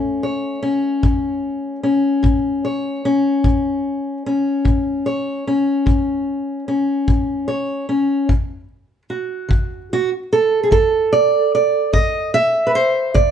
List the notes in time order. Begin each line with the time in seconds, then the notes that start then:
Already playing: A2 A3 C#4
0.23 C#5
0.63 C#4
1.03 A2, kick
1.83 C#4
2.23 A2, kick
2.65 C#5
3.05 C#4
3.44 A2, kick
4.26 C#4
4.65 A2, kick
5.06 C#5
5.47 C#4
5.86 A2, kick
6.68 C#4
7.08 A2, kick
7.48 C#5
7.89 C#4
8.29 D3, kick
9.10 F#4
9.49 D3, kick
9.93 F#4
10.33 A4
10.63 G#4
10.71 D3 A4, kick
11.13 D5
11.55 D5
11.93 D3 D#5, kick
12.34 E5
12.67 B4
12.75 C5
13.14 D3 D5, kick